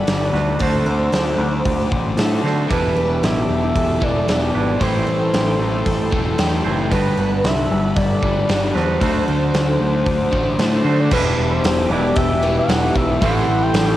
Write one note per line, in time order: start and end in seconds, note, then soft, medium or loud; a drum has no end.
0.00 0.32 G3 medium
0.00 0.33 B3 medium
0.00 0.35 D4 medium
0.00 0.34 F#4 medium
0.00 0.32 B4 medium
0.00 0.62 D5 loud
0.00 2.67 F#5 medium
0.00 0.59 B5 medium
0.07 0.30 G1 medium
0.07 0.58 G2 medium
0.07 0.59 D3 medium
0.07 0.60 G3 medium
0.07 snare loud
0.07 open hi-hat medium
0.33 0.55 D2 medium
0.33 0.59 G3 medium
0.33 0.60 B3 medium
0.33 0.61 D4 medium
0.33 0.59 F#4 medium
0.33 0.59 B4 medium
0.33 snare soft
0.59 0.82 D2 medium
0.59 2.42 D3 medium
0.59 1.38 D3 medium
0.59 2.43 A3 medium
0.59 1.38 A3 medium
0.59 2.43 C4 medium
0.59 1.39 D4 loud
0.59 2.44 F#4 medium
0.59 0.86 A4 medium
0.59 2.68 C5 medium
0.59 0.87 C5 medium
0.59 2.44 C5 medium
0.59 2.68 D6 medium
0.59 kick loud
0.59 open hi-hat medium
0.86 1.08 D2 medium
0.86 1.12 C5 medium
0.86 1.89 C5 loud
1.12 1.34 D2 loud
1.12 1.65 A4 medium
1.12 snare loud
1.12 open hi-hat medium
1.38 1.60 D2 loud
1.38 2.17 A3 medium
1.38 2.16 D4 medium
1.42 2.17 D3 medium
1.65 1.87 D2 medium
1.65 kick loud
1.65 open hi-hat medium
1.92 2.14 A1 medium
1.92 kick medium
2.17 2.39 A2 medium
2.17 2.69 D3 medium
2.17 2.70 A3 medium
2.17 2.70 A4 medium
2.17 snare loud
2.17 open hi-hat medium
2.21 2.71 D4 medium
2.43 2.66 D3 medium
2.43 2.70 D3 medium
2.43 2.71 A3 medium
2.43 2.70 C4 medium
2.43 2.70 F#4 medium
2.43 2.69 C5 medium
2.43 snare soft
2.70 2.92 E1 medium
2.70 3.48 E2 medium
2.70 3.49 B2 loud
2.70 4.53 E3 medium
2.70 3.49 E3 medium
2.70 4.57 G3 medium
2.70 4.53 D4 medium
2.70 4.54 E4 medium
2.70 3.23 G4 medium
2.70 4.79 G4 medium
2.70 3.25 B4 loud
2.70 4.54 B4 medium
2.70 4.79 E5 medium
2.70 4.79 D6 medium
2.70 kick loud
2.70 open hi-hat medium
2.96 3.18 E1 medium
2.96 3.23 B4 medium
3.22 3.44 A1 loud
3.22 3.75 G4 medium
3.22 3.75 E5 loud
3.22 snare loud
3.22 open hi-hat medium
3.49 3.71 E1 medium
3.49 4.26 E2 medium
3.49 4.27 B2 medium
3.49 4.27 E3 medium
3.75 3.97 E1 medium
3.75 4.28 A4 medium
3.75 4.05 E5 loud
3.75 kick loud
3.75 open hi-hat medium
4.01 4.24 E1 medium
4.01 4.26 E2 medium
4.01 4.27 B2 medium
4.01 4.26 E3 medium
4.01 4.82 D5 loud
4.01 kick medium
4.27 4.50 E1 medium
4.27 4.79 E2 medium
4.27 4.79 B2 medium
4.27 4.80 E3 medium
4.27 4.81 G4 medium
4.27 snare loud
4.27 open hi-hat medium
4.55 4.77 G#1 medium
4.55 4.80 E3 medium
4.55 4.81 G3 medium
4.55 4.81 D4 medium
4.55 4.80 E4 medium
4.55 4.80 B4 medium
4.80 5.03 A1 loud
4.80 6.63 A2 medium
4.80 5.58 A2 medium
4.80 6.64 E3 medium
4.80 5.59 E3 loud
4.80 6.64 G3 medium
4.80 5.58 A3 loud
4.80 6.64 C4 medium
4.80 6.64 E4 medium
4.80 5.06 G4 medium
4.80 6.89 A4 medium
4.80 5.07 C5 loud
4.80 6.63 C5 loud
4.80 6.89 G5 medium
4.80 6.89 C6 medium
4.80 kick loud
4.80 open hi-hat medium
5.07 5.29 A1 medium
5.07 5.33 A4 medium
5.07 6.09 C5 medium
5.34 5.55 A1 medium
5.34 5.86 G4 medium
5.34 snare loud
5.34 open hi-hat medium
5.59 5.81 A1 medium
5.59 6.37 A2 medium
5.59 6.38 E3 medium
5.59 6.37 A3 medium
5.86 6.08 A1 medium
5.86 6.38 A4 medium
5.86 kick medium
5.86 open hi-hat medium
6.11 6.34 E1 medium
6.11 6.37 A2 medium
6.11 6.37 E3 medium
6.11 6.37 A3 medium
6.11 kick medium
6.38 6.60 E2 medium
6.38 6.89 A2 medium
6.38 6.90 E3 medium
6.38 6.91 A3 medium
6.38 6.91 G4 medium
6.38 snare loud
6.38 open hi-hat medium
6.64 6.91 F#1 medium
6.64 6.91 A2 medium
6.64 6.90 E3 medium
6.64 6.90 G3 medium
6.64 6.90 C4 medium
6.64 6.90 E4 medium
6.64 6.89 C5 medium
6.91 7.13 G1 loud
6.91 7.68 G2 medium
6.91 7.69 D3 loud
6.91 8.73 G3 medium
6.91 7.69 G3 loud
6.91 8.74 B3 loud
6.91 8.76 D4 medium
6.91 8.75 F#4 medium
6.91 7.17 G4 medium
6.91 7.47 B4 loud
6.91 8.74 B4 medium
6.91 11.08 F#5 medium
6.91 9.00 B5 medium
6.91 kick loud
6.91 open hi-hat medium
7.18 7.40 G1 loud
7.18 7.44 B4 medium
7.44 7.66 C2 medium
7.44 7.97 E5 loud
7.44 snare loud
7.44 open hi-hat medium
7.70 7.92 G1 loud
7.70 8.48 G2 medium
7.70 8.48 D3 medium
7.70 8.48 G3 loud
7.96 8.18 G1 medium
7.96 8.49 A4 medium
7.96 8.76 D5 loud
7.96 kick loud
7.96 open hi-hat soft
8.22 8.44 G1 medium
8.22 8.47 G2 medium
8.22 8.48 D3 medium
8.22 8.47 G3 medium
8.22 kick medium
8.49 8.71 G1 medium
8.49 9.00 G2 medium
8.49 9.00 D3 medium
8.49 9.01 G3 medium
8.49 snare loud
8.49 open hi-hat medium
8.74 8.97 E2 medium
8.74 9.01 G3 medium
8.74 9.01 B3 medium
8.74 9.02 D4 medium
8.74 9.00 F#4 medium
8.74 9.00 B4 medium
8.74 10.85 C5 loud
8.74 snare soft
9.00 9.23 D2 medium
9.00 10.84 D3 medium
9.00 9.79 D3 medium
9.00 10.84 F#3 medium
9.00 10.84 A3 medium
9.00 9.80 A3 loud
9.00 10.85 D4 medium
9.00 10.84 F#4 medium
9.00 9.28 A4 medium
9.00 11.09 C5 medium
9.00 11.09 D6 medium
9.00 kick loud
9.00 open hi-hat medium
9.04 9.79 D4 loud
9.04 10.83 C5 medium
9.28 9.50 D2 medium
9.28 9.54 C5 medium
9.54 9.76 D2 medium
9.54 10.07 A4 medium
9.54 snare loud
9.54 open hi-hat medium
9.80 10.02 D2 medium
9.80 10.57 D3 medium
9.80 10.58 A3 medium
9.80 10.57 D4 medium
10.06 10.28 D2 medium
10.06 kick medium
10.06 open hi-hat medium
10.31 10.54 A1 medium
10.31 10.57 D3 medium
10.31 10.58 A3 medium
10.31 10.57 D4 medium
10.31 kick medium
10.58 10.80 A2 medium
10.58 11.10 D3 medium
10.58 11.10 A3 medium
10.58 11.11 D4 medium
10.58 11.11 A4 medium
10.58 snare loud
10.58 open hi-hat medium
10.85 11.07 D3 medium
10.85 11.11 D3 medium
10.85 11.11 F#3 medium
10.85 11.11 A3 medium
10.85 11.10 D4 medium
10.85 11.10 F#4 medium
10.85 11.10 C5 medium
10.85 11.01 C5 medium
11.00 11.13 D5 medium
11.10 11.32 E1 medium
11.10 11.88 E2 medium
11.10 11.89 B2 medium
11.10 11.93 E3 medium
11.10 11.90 E3 loud
11.10 11.92 G3 loud
11.10 11.89 D4 medium
11.10 12.42 E4 medium
11.10 11.91 E4 medium
11.10 13.19 G4 medium
11.10 11.55 B4 loud
11.10 13.19 E5 medium
11.10 13.20 D6 medium
11.10 kick loud
11.10 crash loud
11.15 11.90 B4 medium
11.38 11.59 E1 medium
11.53 11.91 C5 loud
11.64 11.85 E1 medium
11.64 12.16 G4 medium
11.64 snare loud
11.64 open hi-hat medium
11.90 12.11 E1 medium
11.90 13.21 E2 medium
11.90 13.21 B2 medium
11.90 13.20 E3 medium
11.90 13.21 E3 medium
11.90 13.22 G3 medium
11.90 13.21 D4 medium
11.90 13.21 E4 medium
11.90 13.20 B4 medium
11.90 12.17 D5 loud
12.15 12.58 E1 medium
12.15 13.74 G4 loud
12.15 12.60 E5 loud
12.15 kick loud
12.15 open hi-hat medium
12.42 12.66 E2 medium
12.42 12.68 B2 medium
12.42 12.67 E3 loud
12.42 12.94 B4 medium
12.58 12.97 F#5 loud
12.68 12.90 E1 loud
12.68 13.19 E2 medium
12.68 13.20 B2 medium
12.68 13.21 E3 medium
12.68 snare loud
12.68 open hi-hat medium
12.95 13.16 B1 medium
12.95 13.21 B4 medium
12.95 13.20 E5 loud
12.95 kick medium
13.20 13.42 A1 medium
13.20 13.97 A2 medium
13.20 13.97 E3 medium
13.20 13.97 G3 medium
13.20 13.97 A3 loud
13.20 13.97 C4 medium
13.20 13.74 E4 medium
13.20 13.97 E4 medium
13.20 13.97 G4 medium
13.20 13.97 A4 medium
13.20 13.64 F#5 loud
13.20 13.97 C6 loud
13.20 kick loud
13.20 open hi-hat medium
13.25 13.97 C5 medium
13.48 13.69 A1 medium
13.63 13.97 G5 loud
13.74 13.95 A1 medium
13.74 13.97 G4 medium
13.74 snare loud
13.74 open hi-hat medium